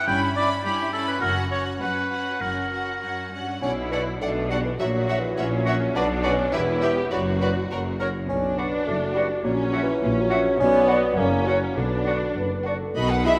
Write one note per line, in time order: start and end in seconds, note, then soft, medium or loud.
0.06 0.55 G1 medium
0.06 0.55 G2 medium
0.06 0.35 C#4 medium
0.06 0.34 E4 soft
0.06 0.20 G5 medium
0.06 0.35 B5 medium
0.36 0.63 C#4 soft
0.36 0.64 E4 soft
0.36 0.49 D5 medium
0.36 0.64 B5 medium
0.64 1.13 G2 medium
0.64 0.92 C#4 soft
0.64 0.91 E4 medium
0.64 0.92 G4 medium
0.64 0.92 B5 soft
0.93 1.21 C#4 medium
0.93 1.22 E4 soft
0.93 1.08 A4 medium
0.93 1.22 B5 soft
1.08 1.21 B4 medium
1.21 1.72 F#1 medium
1.21 1.72 F#2 medium
1.21 1.51 C#4 medium
1.21 1.50 F#4 medium
1.21 1.35 A#4 medium
1.21 1.51 F#5 medium
1.51 1.80 C#4 soft
1.51 1.80 F#4 soft
1.51 1.65 C#5 medium
1.51 1.81 F#5 soft
1.80 2.32 F#2 medium
1.80 2.11 C#4 soft
1.80 2.10 F#4 soft
1.80 2.42 B4 medium
1.80 2.11 F#5 soft
2.12 2.41 C#4 soft
2.12 2.41 F#4 soft
2.12 2.41 F#5 soft
2.41 2.93 F#1 soft
2.41 2.93 F#2 soft
2.41 2.71 C#4 soft
2.41 2.71 F#4 soft
2.41 3.32 A#4 soft
2.41 2.72 F#5 soft
2.72 3.01 C#4 soft
2.72 3.01 F#4 soft
2.72 3.01 F#5 soft
3.02 3.31 F#2 soft
3.02 3.32 C#4 soft
3.02 3.32 F#4 soft
3.02 3.32 F#5 soft
3.33 3.62 G2 soft
3.33 3.62 C#4 soft
3.33 3.62 F#4 soft
3.33 3.62 F#5 soft
3.62 4.14 B1 medium
3.62 4.14 B2 soft
3.62 3.76 C#4 medium
3.62 3.71 D4 soft
3.62 4.17 E4 medium
3.62 3.71 D5 soft
3.62 3.71 F#5 soft
3.92 4.05 B3 medium
3.92 4.01 D4 soft
3.92 4.02 F#4 soft
3.92 4.03 F#4 soft
3.92 4.03 D5 soft
3.92 3.99 D5 soft
3.92 4.01 D5 soft
3.92 4.00 F#5 soft
4.21 4.73 B1 medium
4.21 4.73 B2 medium
4.21 4.52 A3 medium
4.21 4.80 D4 soft
4.21 4.30 D4 soft
4.21 4.30 D5 soft
4.21 4.29 F#5 soft
4.50 4.65 G3 medium
4.50 4.59 D4 soft
4.50 4.61 F#4 soft
4.50 4.61 D5 soft
4.50 4.59 D5 soft
4.50 4.58 D5 soft
4.50 4.59 F#5 soft
4.65 4.72 E3 medium
4.79 5.31 A#1 medium
4.79 5.31 A#2 medium
4.79 5.21 F#3 medium
4.79 5.36 F#4 medium
4.79 4.89 F#4 soft
4.79 4.89 C#5 soft
4.79 4.88 E5 soft
5.08 5.19 F#4 soft
5.08 5.17 F#4 soft
5.08 5.19 C#5 soft
5.08 5.17 C#5 soft
5.08 5.17 E5 soft
5.08 5.16 E5 soft
5.19 5.57 E3 medium
5.37 5.88 A#1 medium
5.37 5.88 A#2 medium
5.37 5.94 C#4 medium
5.37 5.46 F#4 soft
5.37 5.46 C#5 soft
5.37 5.46 E5 soft
5.57 5.95 F#3 medium
5.66 5.76 F#4 medium
5.66 5.75 F#4 soft
5.66 5.78 F#4 medium
5.66 5.75 C#5 soft
5.66 5.78 C#5 medium
5.66 5.75 E5 medium
5.66 5.73 E5 soft
5.95 6.46 B1 medium
5.95 6.46 B2 medium
5.95 6.53 D4 medium
5.95 6.09 D4 medium
5.95 6.04 F#4 medium
5.95 6.04 B4 medium
5.95 6.04 D5 medium
6.24 6.55 C#4 medium
6.24 6.34 F#4 medium
6.24 6.33 F#4 soft
6.24 6.36 F#4 medium
6.24 6.32 B4 medium
6.24 6.35 B4 medium
6.24 6.32 D5 medium
6.24 6.30 D5 medium
6.52 7.04 E1 medium
6.52 7.04 E2 medium
6.52 7.11 B3 medium
6.52 6.82 E4 medium
6.52 6.62 G4 medium
6.52 6.62 B4 medium
6.52 6.61 E5 medium
6.82 7.11 G4 medium
6.82 6.93 G4 medium
6.82 6.91 G4 soft
6.82 6.94 G4 soft
6.82 6.91 B4 medium
6.82 6.94 B4 soft
6.82 6.90 E5 medium
6.82 6.89 E5 soft
7.11 7.63 F#1 medium
7.11 7.63 F#2 medium
7.11 7.69 F#3 medium
7.11 7.98 F#4 medium
7.11 7.19 F#4 soft
7.11 7.19 B4 soft
7.11 7.19 D5 soft
7.41 7.50 F#4 soft
7.41 7.51 B4 soft
7.41 7.50 B4 soft
7.41 7.49 D5 soft
7.41 7.52 D5 soft
7.41 7.47 D5 medium
7.70 8.22 F#1 medium
7.70 8.22 F#2 medium
7.70 7.79 F#4 soft
7.70 7.79 A#4 soft
7.70 7.79 C#5 soft
8.00 8.09 F#4 soft
8.00 8.10 A#4 soft
8.00 8.11 A#4 soft
8.00 8.08 A#4 soft
8.00 8.06 C#5 soft
8.00 8.11 C#5 soft
8.00 8.08 C#5 soft
8.28 8.75 B1 medium
8.28 8.75 B2 medium
8.28 8.59 C#4 medium
8.28 9.41 D4 medium
8.28 10.56 F#4 medium
8.28 9.42 D5 medium
8.58 8.86 B3 medium
8.58 8.80 F#4 medium
8.58 8.69 F#4 soft
8.58 8.80 B4 medium
8.58 8.64 D5 soft
8.58 8.80 D5 medium
8.86 9.33 F#1 medium
8.86 9.33 F#2 medium
8.86 9.15 A3 medium
9.15 9.29 G3 medium
9.15 9.37 F#4 medium
9.15 9.27 F#4 soft
9.15 9.37 B4 soft
9.15 9.22 D5 soft
9.15 9.38 D5 soft
9.44 9.90 A#1 medium
9.44 9.90 A#2 medium
9.44 9.82 F#3 medium
9.44 10.01 C#4 medium
9.44 10.60 C#5 medium
9.73 9.84 F#4 medium
9.73 9.95 F#4 medium
9.73 9.95 C#5 medium
9.73 9.95 E5 medium
9.73 9.80 E5 medium
9.83 10.23 E3 medium
10.02 10.48 A#1 medium
10.02 10.48 A#2 medium
10.02 10.58 C#4 medium
10.22 10.59 F#3 medium
10.30 10.41 F#4 medium
10.30 10.52 F#4 medium
10.30 10.52 C#5 medium
10.30 10.38 E5 medium
10.30 10.53 E5 medium
10.59 11.05 B1 medium
10.59 11.05 B2 medium
10.59 11.16 B3 medium
10.59 10.90 C#4 loud
10.59 11.14 F#4 medium
10.59 11.14 D5 medium
10.88 11.19 B3 medium
10.88 10.99 F#4 medium
10.88 11.11 F#4 medium
10.88 11.10 D5 medium
10.88 10.96 D5 medium
10.88 11.10 F#5 medium
11.17 11.64 F#1 medium
11.17 11.64 F#2 medium
11.17 11.46 A#3 medium
11.17 11.76 C#4 medium
11.17 11.76 F#4 medium
11.17 11.77 C#5 medium
11.46 11.60 F#3 medium
11.46 11.69 F#4 medium
11.46 11.59 F#4 soft
11.46 11.69 C#5 medium
11.46 11.55 C#5 soft
11.46 11.69 F#5 medium
11.77 12.24 B1 medium
11.77 12.24 B2 medium
11.77 12.36 D3 medium
11.77 12.66 D4 medium
11.77 12.30 F#4 medium
11.77 12.31 B4 medium
12.06 12.18 F#4 soft
12.06 12.29 F#4 medium
12.06 12.29 D5 soft
12.06 12.14 D5 soft
12.06 12.29 F#5 soft
12.36 12.84 F#1 medium
12.36 12.84 F#2 medium
12.36 12.64 B4 medium
12.65 12.77 F#4 soft
12.65 12.89 F#4 soft
12.65 12.96 A4 medium
12.65 12.89 D5 soft
12.65 12.73 D5 soft
12.65 12.88 F#5 soft
12.96 13.39 B1 medium
12.96 13.39 B2 medium
12.96 13.23 D#3 medium
12.96 13.10 F#4 medium
12.96 13.10 D#5 medium
12.96 13.10 B5 medium
13.10 13.25 B4 medium
13.10 13.25 F#5 soft
13.10 13.25 F#5 medium
13.25 13.38 G#3 medium
13.25 13.38 E4 loud
13.25 13.39 F#4 medium
13.25 13.39 D#5 medium
13.25 13.34 E5 medium
13.25 13.33 E5 medium
13.25 13.39 B5 medium